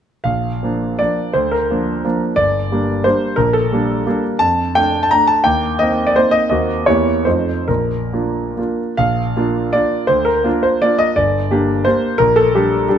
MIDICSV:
0, 0, Header, 1, 2, 480
1, 0, Start_track
1, 0, Key_signature, -2, "major"
1, 0, Tempo, 371058
1, 318, Time_signature, 3, 2, 24, 8
1, 1286, Tempo, 350058
1, 2726, Tempo, 335196
1, 6086, Tempo, 351288
1, 8966, Tempo, 381437
1, 9926, Tempo, 430108
1, 11846, Tempo, 375940
1, 12806, Tempo, 366077
1, 14246, Tempo, 337458
1, 17303, End_track
2, 0, Start_track
2, 0, Title_t, "Grand piano"
2, 0, Program_c, 0, 0
2, 307, Note_on_c, 0, 77, 59
2, 320, Note_on_c, 0, 34, 37
2, 616, Control_c, 0, 64, 127
2, 797, Note_off_c, 0, 34, 0
2, 813, Note_on_c, 0, 53, 30
2, 819, Note_on_c, 0, 58, 34
2, 830, Note_on_c, 0, 62, 35
2, 1239, Note_off_c, 0, 53, 0
2, 1242, Note_off_c, 0, 58, 0
2, 1248, Note_off_c, 0, 62, 0
2, 1276, Note_on_c, 0, 74, 61
2, 1279, Note_off_c, 0, 77, 0
2, 1289, Note_on_c, 0, 53, 31
2, 1293, Note_on_c, 0, 58, 29
2, 1298, Control_c, 0, 64, 0
2, 1299, Note_on_c, 0, 62, 32
2, 1721, Note_off_c, 0, 53, 0
2, 1723, Note_off_c, 0, 58, 0
2, 1727, Note_off_c, 0, 62, 0
2, 1753, Note_on_c, 0, 72, 61
2, 1758, Note_on_c, 0, 38, 42
2, 1762, Note_off_c, 0, 74, 0
2, 1998, Note_off_c, 0, 72, 0
2, 2000, Note_on_c, 0, 70, 61
2, 2012, Control_c, 0, 64, 127
2, 2229, Note_off_c, 0, 38, 0
2, 2264, Note_on_c, 0, 53, 37
2, 2269, Note_on_c, 0, 58, 35
2, 2271, Note_on_c, 0, 62, 38
2, 2687, Note_off_c, 0, 53, 0
2, 2690, Note_off_c, 0, 58, 0
2, 2691, Note_off_c, 0, 62, 0
2, 2728, Note_on_c, 0, 53, 34
2, 2733, Note_on_c, 0, 58, 33
2, 2739, Note_on_c, 0, 62, 39
2, 2746, Control_c, 0, 64, 0
2, 2959, Note_off_c, 0, 70, 0
2, 3143, Note_off_c, 0, 53, 0
2, 3146, Note_off_c, 0, 58, 0
2, 3149, Note_off_c, 0, 62, 0
2, 3178, Note_on_c, 0, 74, 76
2, 3191, Note_on_c, 0, 31, 37
2, 3474, Control_c, 0, 64, 127
2, 3662, Note_off_c, 0, 31, 0
2, 3688, Note_on_c, 0, 55, 35
2, 3696, Note_on_c, 0, 58, 35
2, 3703, Note_on_c, 0, 62, 39
2, 4130, Note_off_c, 0, 55, 0
2, 4135, Note_off_c, 0, 58, 0
2, 4139, Note_off_c, 0, 62, 0
2, 4154, Note_on_c, 0, 72, 73
2, 4168, Note_off_c, 0, 74, 0
2, 4169, Note_on_c, 0, 55, 32
2, 4177, Note_on_c, 0, 58, 36
2, 4185, Control_c, 0, 64, 0
2, 4185, Note_on_c, 0, 62, 37
2, 4600, Note_off_c, 0, 55, 0
2, 4604, Note_off_c, 0, 58, 0
2, 4608, Note_off_c, 0, 62, 0
2, 4611, Note_on_c, 0, 70, 72
2, 4632, Note_on_c, 0, 34, 44
2, 4640, Note_off_c, 0, 72, 0
2, 4858, Note_on_c, 0, 69, 65
2, 4869, Note_off_c, 0, 70, 0
2, 4890, Control_c, 0, 64, 127
2, 5106, Note_off_c, 0, 34, 0
2, 5130, Note_on_c, 0, 55, 40
2, 5138, Note_on_c, 0, 58, 38
2, 5148, Note_on_c, 0, 62, 45
2, 5564, Note_off_c, 0, 55, 0
2, 5569, Note_off_c, 0, 58, 0
2, 5574, Note_off_c, 0, 62, 0
2, 5617, Note_on_c, 0, 55, 38
2, 5620, Note_on_c, 0, 58, 40
2, 5624, Control_c, 0, 64, 0
2, 5629, Note_on_c, 0, 62, 41
2, 5836, Note_off_c, 0, 69, 0
2, 6041, Note_off_c, 0, 55, 0
2, 6043, Note_off_c, 0, 58, 0
2, 6048, Note_off_c, 0, 62, 0
2, 6087, Note_on_c, 0, 81, 86
2, 6104, Note_on_c, 0, 41, 46
2, 6342, Control_c, 0, 64, 127
2, 6570, Note_off_c, 0, 41, 0
2, 6575, Note_off_c, 0, 81, 0
2, 6581, Note_on_c, 0, 79, 82
2, 6592, Note_on_c, 0, 62, 45
2, 6596, Note_on_c, 0, 57, 43
2, 6955, Note_off_c, 0, 79, 0
2, 6958, Note_on_c, 0, 81, 74
2, 7029, Note_off_c, 0, 62, 0
2, 7031, Note_off_c, 0, 57, 0
2, 7068, Note_on_c, 0, 82, 86
2, 7073, Note_off_c, 0, 81, 0
2, 7082, Control_c, 0, 64, 0
2, 7085, Note_on_c, 0, 62, 40
2, 7087, Note_on_c, 0, 57, 39
2, 7293, Note_on_c, 0, 81, 74
2, 7297, Note_off_c, 0, 82, 0
2, 7483, Note_off_c, 0, 62, 0
2, 7484, Note_off_c, 0, 57, 0
2, 7516, Note_on_c, 0, 79, 74
2, 7517, Note_off_c, 0, 81, 0
2, 7533, Note_on_c, 0, 39, 47
2, 7724, Control_c, 0, 64, 127
2, 7981, Note_off_c, 0, 39, 0
2, 7986, Note_off_c, 0, 79, 0
2, 7997, Note_on_c, 0, 75, 75
2, 8011, Note_on_c, 0, 58, 39
2, 8026, Note_on_c, 0, 60, 41
2, 8027, Note_on_c, 0, 63, 40
2, 8367, Note_off_c, 0, 75, 0
2, 8375, Note_on_c, 0, 74, 67
2, 8448, Note_off_c, 0, 58, 0
2, 8457, Note_off_c, 0, 60, 0
2, 8457, Note_off_c, 0, 63, 0
2, 8492, Note_off_c, 0, 74, 0
2, 8501, Note_on_c, 0, 72, 77
2, 8504, Control_c, 0, 64, 0
2, 8507, Note_on_c, 0, 58, 35
2, 8512, Note_on_c, 0, 60, 36
2, 8526, Note_on_c, 0, 63, 39
2, 8712, Note_on_c, 0, 75, 80
2, 8737, Note_off_c, 0, 72, 0
2, 8930, Note_off_c, 0, 58, 0
2, 8933, Note_off_c, 0, 60, 0
2, 8940, Note_off_c, 0, 75, 0
2, 8941, Note_off_c, 0, 63, 0
2, 8961, Note_on_c, 0, 75, 67
2, 8974, Note_on_c, 0, 39, 48
2, 8977, Note_on_c, 0, 58, 33
2, 8978, Note_on_c, 0, 60, 28
2, 8987, Note_on_c, 0, 66, 34
2, 9188, Control_c, 0, 64, 127
2, 9386, Note_off_c, 0, 58, 0
2, 9386, Note_off_c, 0, 60, 0
2, 9391, Note_off_c, 0, 66, 0
2, 9416, Note_off_c, 0, 39, 0
2, 9423, Note_off_c, 0, 75, 0
2, 9424, Note_on_c, 0, 73, 67
2, 9438, Note_on_c, 0, 40, 49
2, 9441, Note_on_c, 0, 58, 35
2, 9443, Control_c, 0, 64, 0
2, 9445, Note_on_c, 0, 64, 33
2, 9452, Note_on_c, 0, 67, 36
2, 9679, Control_c, 0, 64, 127
2, 9886, Note_off_c, 0, 58, 0
2, 9888, Note_off_c, 0, 64, 0
2, 9892, Note_off_c, 0, 67, 0
2, 9911, Note_on_c, 0, 72, 56
2, 9919, Note_off_c, 0, 40, 0
2, 9923, Note_on_c, 0, 41, 42
2, 9923, Note_on_c, 0, 57, 26
2, 9927, Note_off_c, 0, 73, 0
2, 9932, Note_on_c, 0, 63, 31
2, 9937, Note_on_c, 0, 65, 28
2, 9940, Control_c, 0, 64, 0
2, 10157, Control_c, 0, 64, 127
2, 10352, Note_off_c, 0, 57, 0
2, 10357, Note_off_c, 0, 63, 0
2, 10359, Note_off_c, 0, 65, 0
2, 10383, Note_off_c, 0, 41, 0
2, 10389, Note_on_c, 0, 70, 51
2, 10392, Note_off_c, 0, 72, 0
2, 10399, Note_on_c, 0, 34, 37
2, 10417, Control_c, 0, 64, 0
2, 10626, Control_c, 0, 64, 127
2, 10885, Note_off_c, 0, 34, 0
2, 10895, Note_on_c, 0, 58, 31
2, 10900, Note_on_c, 0, 62, 30
2, 10906, Note_on_c, 0, 65, 33
2, 11347, Note_off_c, 0, 58, 0
2, 11349, Note_off_c, 0, 62, 0
2, 11352, Note_off_c, 0, 65, 0
2, 11387, Note_on_c, 0, 58, 30
2, 11395, Note_on_c, 0, 62, 28
2, 11406, Note_on_c, 0, 65, 30
2, 11412, Control_c, 0, 64, 0
2, 11624, Note_off_c, 0, 70, 0
2, 11799, Note_off_c, 0, 58, 0
2, 11803, Note_off_c, 0, 62, 0
2, 11808, Note_off_c, 0, 65, 0
2, 11838, Note_on_c, 0, 77, 76
2, 11848, Note_on_c, 0, 34, 44
2, 12110, Control_c, 0, 64, 127
2, 12315, Note_off_c, 0, 34, 0
2, 12333, Note_on_c, 0, 58, 38
2, 12340, Note_on_c, 0, 65, 45
2, 12343, Note_on_c, 0, 62, 42
2, 12762, Note_off_c, 0, 58, 0
2, 12766, Note_off_c, 0, 65, 0
2, 12767, Note_off_c, 0, 62, 0
2, 12797, Note_on_c, 0, 74, 66
2, 12802, Note_off_c, 0, 77, 0
2, 12810, Note_on_c, 0, 58, 30
2, 12812, Note_on_c, 0, 62, 33
2, 12818, Control_c, 0, 64, 0
2, 12820, Note_on_c, 0, 65, 35
2, 13224, Note_off_c, 0, 58, 0
2, 13225, Note_off_c, 0, 62, 0
2, 13230, Note_off_c, 0, 65, 0
2, 13250, Note_on_c, 0, 72, 70
2, 13263, Note_off_c, 0, 74, 0
2, 13265, Note_on_c, 0, 38, 42
2, 13481, Note_on_c, 0, 70, 70
2, 13494, Note_off_c, 0, 72, 0
2, 13502, Control_c, 0, 64, 127
2, 13733, Note_on_c, 0, 58, 44
2, 13739, Note_off_c, 0, 38, 0
2, 13741, Note_on_c, 0, 62, 40
2, 13747, Note_on_c, 0, 65, 48
2, 13775, Control_c, 0, 64, 0
2, 13978, Note_on_c, 0, 72, 66
2, 13998, Note_off_c, 0, 70, 0
2, 14186, Note_off_c, 0, 58, 0
2, 14191, Note_off_c, 0, 62, 0
2, 14194, Note_off_c, 0, 65, 0
2, 14225, Note_on_c, 0, 74, 73
2, 14232, Note_on_c, 0, 58, 37
2, 14233, Note_off_c, 0, 72, 0
2, 14239, Note_on_c, 0, 65, 38
2, 14244, Note_on_c, 0, 62, 35
2, 14464, Note_on_c, 0, 75, 81
2, 14485, Note_off_c, 0, 74, 0
2, 14681, Note_off_c, 0, 58, 0
2, 14686, Note_off_c, 0, 65, 0
2, 14688, Note_off_c, 0, 62, 0
2, 14713, Note_on_c, 0, 74, 69
2, 14724, Note_off_c, 0, 75, 0
2, 14728, Note_on_c, 0, 31, 45
2, 14998, Control_c, 0, 64, 127
2, 15202, Note_off_c, 0, 31, 0
2, 15208, Note_on_c, 0, 58, 46
2, 15214, Note_on_c, 0, 67, 55
2, 15217, Note_on_c, 0, 62, 46
2, 15638, Note_off_c, 0, 58, 0
2, 15641, Note_off_c, 0, 67, 0
2, 15643, Note_off_c, 0, 62, 0
2, 15679, Note_off_c, 0, 74, 0
2, 15689, Note_on_c, 0, 72, 74
2, 15708, Note_on_c, 0, 58, 38
2, 15708, Note_on_c, 0, 62, 39
2, 15709, Control_c, 0, 64, 0
2, 15720, Note_on_c, 0, 67, 38
2, 16117, Note_off_c, 0, 58, 0
2, 16117, Note_off_c, 0, 62, 0
2, 16124, Note_off_c, 0, 67, 0
2, 16153, Note_off_c, 0, 72, 0
2, 16164, Note_on_c, 0, 70, 84
2, 16189, Note_on_c, 0, 34, 49
2, 16378, Control_c, 0, 64, 127
2, 16399, Note_off_c, 0, 70, 0
2, 16419, Note_on_c, 0, 69, 79
2, 16649, Note_off_c, 0, 34, 0
2, 16681, Note_on_c, 0, 55, 48
2, 16690, Note_on_c, 0, 62, 47
2, 16695, Note_on_c, 0, 67, 55
2, 17105, Note_off_c, 0, 55, 0
2, 17110, Note_off_c, 0, 62, 0
2, 17113, Note_off_c, 0, 67, 0
2, 17155, Control_c, 0, 64, 0
2, 17164, Note_on_c, 0, 62, 42
2, 17168, Note_on_c, 0, 55, 41
2, 17173, Note_on_c, 0, 67, 42
2, 17303, Note_off_c, 0, 55, 0
2, 17303, Note_off_c, 0, 62, 0
2, 17303, Note_off_c, 0, 67, 0
2, 17303, Note_off_c, 0, 69, 0
2, 17303, End_track
0, 0, End_of_file